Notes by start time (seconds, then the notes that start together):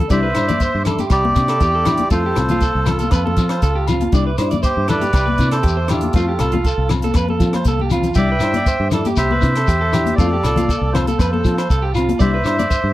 0.00 low conga
0.10 C2 G3 D4 E4 C5 D5 E5 C6 D6, kick, closed hi-hat, shekere
0.23 B4
0.35 G2 D4 E4 C5, cross-stick, closed hi-hat, low agogo, shekere
0.48 D5, closed hi-hat, high conga, low conga, shekere
0.60 C5, kick, closed hi-hat, shekere
0.75 G2
0.85 A4, cross-stick, closed hi-hat, low conga, low agogo, shekere
0.90 D4
0.99 G4, closed hi-hat, high conga, shekere
1.10 C2 G4 D5, kick, cross-stick, closed hi-hat, low agogo, shekere
1.25 muted clean electric guitar stroke, high conga
1.36 C3 D4, kick, closed hi-hat, shekere
1.48 A4, cross-stick, closed hi-hat, low agogo
1.60 E2 G4, kick, closed hi-hat, shekere
1.75 A4
1.85 D4 E4 G4, cross-stick, closed hi-hat, low conga, low agogo, shekere
1.97 closed hi-hat, high conga
2.10 F2 A3 F4 A4 C5 F5 A5, muted steel-string acoustic guitar stroke, kick, closed hi-hat, shekere
2.26 G4
2.35 C2 C4 F4, cross-stick, closed hi-hat, low agogo, shekere
2.49 F4, closed hi-hat, high conga, low conga, shekere
2.61 A4, kick, closed hi-hat, shekere
2.75 C2
2.86 C4 F4 A4, cross-stick, closed hi-hat, low conga, low agogo, shekere
2.99 A4, closed hi-hat, high conga, shekere
3.11 F2 F4 A4 B4, kick, cross-stick, closed hi-hat, low agogo, shekere
3.26 A4, high conga
3.37 F3 C4 F4, kick, closed hi-hat, shekere
3.49 C5, cross-stick, closed hi-hat, low agogo
3.62 C#2 A4, kick, closed hi-hat, shekere
3.75 G4
3.87 C4 F4, closed hi-hat, low conga, low agogo, shekere
4.01 closed hi-hat, high conga
4.12 C2 G3 D4 E4 D5 E5 D6, kick, closed hi-hat, shekere
4.27 B4
4.38 G2 D4 E4 C5, cross-stick, closed hi-hat, low agogo, shekere
4.51 D5, closed hi-hat, high conga, low conga, shekere
4.63 G4 C5, kick, closed hi-hat, shekere
4.77 G2
4.88 D4 E4 A4 B4 D5, cross-stick, closed hi-hat, low conga, low agogo, shekere
5.01 G4, closed hi-hat, high conga, shekere
5.13 C2 G4, kick, cross-stick, closed hi-hat, low agogo, shekere
5.26 B4, high conga
5.38 C3 E4, kick, closed hi-hat, shekere
5.43 D4
5.51 A4 C5, cross-stick, closed hi-hat, low agogo
5.63 E2 G4, kick, closed hi-hat
5.68 shekere
5.77 C5
5.88 E4 F4 G4 A4, cross-stick, closed hi-hat, low conga, low agogo, shekere
5.92 D4
6.01 closed hi-hat, high conga
6.13 F2 A3 C4 F4 F5 A5, kick, closed hi-hat, shekere
6.28 G4
6.39 C2 F4 A4, cross-stick, closed hi-hat, low agogo, shekere
6.43 C4
6.52 F4, closed hi-hat, high conga, low conga
6.65 A4, kick, closed hi-hat, shekere
6.78 C2
6.89 C4 F4, cross-stick, closed hi-hat, low conga, low agogo, shekere
7.02 A4, closed hi-hat, high conga, shekere
7.14 F2 B4, kick, cross-stick, closed hi-hat, low agogo, shekere
7.29 A4, high conga
7.40 F3 C4 F4, kick, closed hi-hat, shekere
7.53 C5, cross-stick, closed hi-hat, high conga, low agogo
7.65 C2 A4, kick, closed hi-hat, high conga, shekere
7.80 G4, high conga
7.90 C4 F4, closed hi-hat, low conga, low agogo, shekere
8.03 closed hi-hat, low conga, shekere
8.14 C2 G3 D4 D5 E5 G5 D6, kick, closed hi-hat, shekere
8.19 E4
8.32 B4
8.39 G2 E4, cross-stick, closed hi-hat, low agogo, shekere
8.43 D4 C5
8.54 D5, closed hi-hat, high conga
8.66 C5, kick, closed hi-hat, shekere
8.80 G2
8.91 D4 E4 A4, cross-stick, closed hi-hat, low conga, low agogo, shekere
9.05 G4, closed hi-hat, high conga, shekere
9.16 C2 G4 C5 E5, kick, cross-stick, closed hi-hat, low agogo, shekere
9.31 B4, high conga
9.41 C3 D4 E4, kick, closed hi-hat, shekere
9.56 A4, cross-stick, closed hi-hat, low agogo
9.68 E2 G4, kick, closed hi-hat, shekere
9.81 A4
9.92 D4 E4 G4, cross-stick, closed hi-hat, low conga, low agogo, shekere
10.06 closed hi-hat, high conga
10.16 F2 A3 C4 F4 A4 D5 F5 A5, kick, closed hi-hat, shekere
10.21 F4
10.33 G4
10.43 C2 F4 A4, cross-stick, closed hi-hat, low agogo, shekere
10.48 C4
10.56 F4, closed hi-hat, high conga, low conga, shekere
10.69 A4, kick, closed hi-hat, shekere
10.81 C2
10.92 F4 A4 C5, cross-stick, closed hi-hat, low conga, low agogo, shekere
10.96 C4
11.07 A4, closed hi-hat, high conga, shekere
11.18 F2 A4 B4 C5, kick, cross-stick, closed hi-hat, low agogo, shekere
11.33 A4, high conga
11.44 F3 C4 F4, kick, closed hi-hat, shekere
11.58 C5, cross-stick, closed hi-hat, low agogo
11.70 C2 A4, kick, closed hi-hat, shekere
11.82 G4
11.94 C4 F4, closed hi-hat, low agogo, shekere
12.09 closed hi-hat, high conga
12.19 C2 G3 D4 E4 C5 D5 E5 D6, kick, closed hi-hat, shekere
12.34 B4
12.44 G2 D4 E4 C5, cross-stick, closed hi-hat, low agogo, shekere
12.59 D5, closed hi-hat, high conga, shekere
12.70 C5, kick, closed hi-hat, shekere
12.84 G2